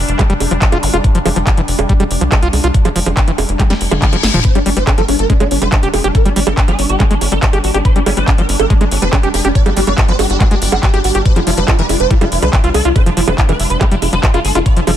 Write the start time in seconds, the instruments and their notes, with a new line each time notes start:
Already playing: synth texture G3 D4
0.08 analog synth bass F1, closed hi-hat
0.19 acid bass G3, kick, clap, closed hi-hat, high bongo
0.30 analog synth bass F1, acid bass G3, closed hi-hat
0.40 analog synth bass F1, open hi-hat, high bongo
0.51 analog synth bass F1, acid bass F3, closed hi-hat
0.62 acid bass E3, kick, clap, closed hi-hat
0.72 analog synth bass F1, acid bass F4, closed hi-hat, high bongo
0.83 analog synth bass G1, open hi-hat, zap
0.94 analog synth bass F1, acid bass F4, closed hi-hat, high bongo
1.04 kick, closed hi-hat
1.15 analog synth bass F1, acid bass F3, closed hi-hat
1.25 analog synth bass F1, acid bass F3, open hi-hat, high bongo
1.36 analog synth bass F1, acid bass F3, closed hi-hat
1.47 kick, clap, closed hi-hat, high bongo
1.57 analog synth bass F1, acid bass E3, closed hi-hat
1.68 analog synth bass F1, open hi-hat
1.79 analog synth bass F1, closed hi-hat, high bongo
1.89 acid bass G3, kick, closed hi-hat
2.00 analog synth bass F1, acid bass G3, closed hi-hat, high bongo
2.11 analog synth bass F1, open hi-hat
2.21 analog synth bass C2, acid bass F3, closed hi-hat
2.32 acid bass E3, kick, clap, closed hi-hat, high bongo
2.42 analog synth bass C2, acid bass F4, closed hi-hat
2.53 analog synth bass C2, open hi-hat, high bongo
2.64 analog synth bass C2, acid bass F4, closed hi-hat
2.74 kick, closed hi-hat
2.85 analog synth bass F1, acid bass F3, closed hi-hat, high bongo
2.96 analog synth bass F1, acid bass F3, open hi-hat
3.06 analog synth bass F1, acid bass F3, closed hi-hat, high bongo
3.17 kick, clap, closed hi-hat
3.28 analog synth bass F1, acid bass E3, closed hi-hat
3.38 analog synth bass F1, open hi-hat, high bongo
3.49 analog synth bass F1, closed hi-hat
3.60 acid bass G3, kick, clap, closed hi-hat, high tom, reverse cymbal, high bongo
3.70 analog synth bass F1, acid bass G3, snare, closed hi-hat
3.81 analog synth bass F1, open hi-hat
3.91 analog synth bass F1, acid bass F3, closed hi-hat, mid tom, high bongo
4.02 acid bass G3, kick, clap, closed hi-hat, mid tom
4.13 analog synth bass F1, acid bass F3, closed hi-hat, high bongo
4.23 analog synth bass G1, snare, open hi-hat
4.34 analog synth bass F1, acid bass F3, mid tom, open hi-hat
4.45 synth texture G3 D4, digital synth lead C5, kick, closed hi-hat
4.55 analog synth bass G1, acid bass G3, digital synth lead D4, closed hi-hat, high bongo
4.66 analog synth bass G1, acid bass G3, digital synth lead D4, open hi-hat
4.77 analog synth bass G1, acid bass G3, digital synth lead C5, closed hi-hat
4.87 digital synth lead D4, kick, clap, closed hi-hat, high bongo
4.98 analog synth bass G1, acid bass F3, digital synth lead A#4, closed hi-hat
5.08 analog synth bass G1, digital synth lead D4, open hi-hat, high bongo
5.19 analog synth bass G1, digital synth lead A#4, closed hi-hat
5.30 acid bass G#3, digital synth lead D4, kick, closed hi-hat
5.40 analog synth bass G1, acid bass G#3, digital synth lead D4, closed hi-hat, high bongo
5.51 analog synth bass G1, digital synth lead D4, open hi-hat
5.62 analog synth bass F1, acid bass G3, digital synth lead C5, closed hi-hat, high bongo
5.72 acid bass F3, digital synth lead D4, kick, clap, closed hi-hat
5.83 analog synth bass F1, digital synth lead D4, acid bass G4, closed hi-hat
5.94 analog synth bass F1, digital synth lead G#4, open hi-hat, high bongo
6.04 analog synth bass F1, digital synth lead D4, acid bass G4, closed hi-hat
6.15 digital synth lead A#4, kick, closed hi-hat, high bongo
6.26 analog synth bass G1, acid bass G3, digital synth lead D4, closed hi-hat
6.36 analog synth bass G1, acid bass G3, digital synth lead D4, open hi-hat
6.47 analog synth bass G1, acid bass G3, digital synth lead A#4, closed hi-hat, high bongo
6.57 digital synth lead D4, kick, clap, closed hi-hat
6.68 analog synth bass G1, acid bass F3, digital synth lead G#4, closed hi-hat, high bongo
6.79 analog synth bass G1, digital synth lead D4, open hi-hat
6.89 analog synth bass G1, digital synth lead G4, closed hi-hat
7.00 acid bass G#3, digital synth lead D4, kick, clap, closed hi-hat, high bongo
7.11 analog synth bass G1, acid bass G#3, digital synth lead D4, closed hi-hat
7.21 analog synth bass G1, digital synth lead D4, open hi-hat, high bongo
7.32 analog synth bass G1, acid bass G3, digital synth lead A#4, closed hi-hat
7.43 acid bass F3, digital synth lead D4, kick, clap, closed hi-hat
7.53 analog synth bass G1, digital synth lead D4, acid bass G4, closed hi-hat, high bongo
7.64 analog synth bass G#1, digital synth lead G4, open hi-hat
7.74 analog synth bass G1, digital synth lead D4, acid bass G4, closed hi-hat, high bongo
7.85 digital synth lead C5, kick, closed hi-hat
7.96 analog synth bass G1, acid bass G3, digital synth lead D4, closed hi-hat
8.06 analog synth bass G1, acid bass G3, digital synth lead D4, open hi-hat, high bongo
8.17 analog synth bass G1, acid bass G3, digital synth lead C5, closed hi-hat
8.28 digital synth lead D4, kick, clap, closed hi-hat, high bongo
8.38 analog synth bass G1, acid bass F3, digital synth lead A#4, closed hi-hat
8.49 analog synth bass G1, digital synth lead D4, open hi-hat
8.60 analog synth bass G1, digital synth lead A#4, closed hi-hat, high bongo
8.70 acid bass G#3, digital synth lead D4, kick, closed hi-hat
8.81 analog synth bass G1, acid bass G#3, digital synth lead D4, closed hi-hat, high bongo
8.91 analog synth bass G1, digital synth lead D4, open hi-hat
9.02 analog synth bass F1, acid bass G3, digital synth lead C5, closed hi-hat
9.13 acid bass F3, digital synth lead D4, kick, clap, closed hi-hat, high bongo
9.23 analog synth bass F1, digital synth lead D4, acid bass G4, closed hi-hat
9.34 analog synth bass F1, digital synth lead G#4, open hi-hat, high bongo
9.45 analog synth bass F1, digital synth lead D4, acid bass G4, closed hi-hat
9.55 digital synth lead D5, kick, closed hi-hat
9.66 analog synth bass G1, acid bass G3, digital synth lead G4, closed hi-hat, high bongo
9.77 analog synth bass G1, acid bass G3, digital synth lead G4, open hi-hat
9.87 analog synth bass G1, acid bass G3, digital synth lead D5, closed hi-hat, high bongo
9.98 digital synth lead G4, kick, clap, closed hi-hat
10.08 analog synth bass G1, acid bass F3, digital synth lead C5, closed hi-hat
10.19 analog synth bass G1, digital synth lead G4, open hi-hat, high bongo
10.30 analog synth bass G1, digital synth lead G4, closed hi-hat
10.40 acid bass G#3, digital synth lead G4, kick, clap, closed hi-hat, high bongo
10.51 analog synth bass G1, acid bass G#3, digital synth lead G4, closed hi-hat
10.62 analog synth bass G1, digital synth lead G4, open hi-hat
10.72 analog synth bass G1, acid bass G3, digital synth lead G4, closed hi-hat, high bongo
10.83 acid bass F3, digital synth lead G4, kick, clap, closed hi-hat
10.94 analog synth bass G1, acid bass G4, digital synth lead G4, closed hi-hat, high bongo
11.04 analog synth bass G#1, digital synth lead G4, open hi-hat
11.15 analog synth bass G1, digital synth lead G4, acid bass G4, closed hi-hat
11.25 digital synth lead C5, kick, closed hi-hat
11.36 analog synth bass F1, acid bass F3, digital synth lead F4, closed hi-hat, high bongo
11.47 analog synth bass F1, acid bass F3, digital synth lead F4, open hi-hat
11.57 analog synth bass F1, acid bass F3, digital synth lead C5, closed hi-hat
11.68 digital synth lead F4, kick, clap, closed hi-hat, high bongo
11.79 analog synth bass F1, acid bass E3, digital synth lead B4, closed hi-hat
11.89 analog synth bass F1, digital synth lead F4, open hi-hat, high bongo
12.00 analog synth bass F1, digital synth lead C5, closed hi-hat
12.11 acid bass G3, digital synth lead F4, kick, closed hi-hat
12.21 analog synth bass F1, acid bass G3, digital synth lead F4, closed hi-hat, high bongo
12.32 analog synth bass F1, digital synth lead F4, open hi-hat
12.42 analog synth bass C2, acid bass F3, digital synth lead C5, closed hi-hat, high bongo
12.53 acid bass E3, digital synth lead F4, kick, clap, closed hi-hat
12.64 analog synth bass C2, digital synth lead F4, acid bass F4, closed hi-hat
12.74 analog synth bass C2, digital synth lead A4, open hi-hat, high bongo
12.85 analog synth bass C2, digital synth lead F4, acid bass F4, closed hi-hat
12.96 digital synth lead C5, kick, closed hi-hat, high bongo
13.06 analog synth bass F1, acid bass F3, digital synth lead F4, closed hi-hat
13.17 analog synth bass F1, acid bass F3, digital synth lead F4, open hi-hat
13.28 analog synth bass F1, acid bass F3, digital synth lead C5, closed hi-hat, high bongo
13.38 digital synth lead F4, kick, clap, closed hi-hat
13.49 analog synth bass F1, acid bass E3, digital synth lead B4, closed hi-hat, high bongo
13.60 analog synth bass F1, digital synth lead F4, open hi-hat
13.70 analog synth bass F1, digital synth lead C5, closed hi-hat
13.81 acid bass G3, digital synth lead F4, kick, clap, closed hi-hat, high bongo
13.91 analog synth bass F1, acid bass G3, digital synth lead F4, closed hi-hat
14.02 analog synth bass F1, digital synth lead F4, open hi-hat, high bongo
14.13 analog synth bass F1, acid bass F3, digital synth lead C5, closed hi-hat
14.23 acid bass E3, digital synth lead F4, kick, clap, closed hi-hat
14.34 analog synth bass F1, digital synth lead F4, acid bass F4, closed hi-hat, high bongo
14.45 analog synth bass G1, digital synth lead A4, open hi-hat
14.55 analog synth bass F1, acid bass F4, digital synth lead F4, closed hi-hat, zap, high bongo
14.66 digital synth lead D5, kick, closed hi-hat, riser
14.77 analog synth bass F1, acid bass F3, digital synth lead F4, closed hi-hat
14.87 analog synth bass F1, acid bass F3, digital synth lead F4, open hi-hat, high bongo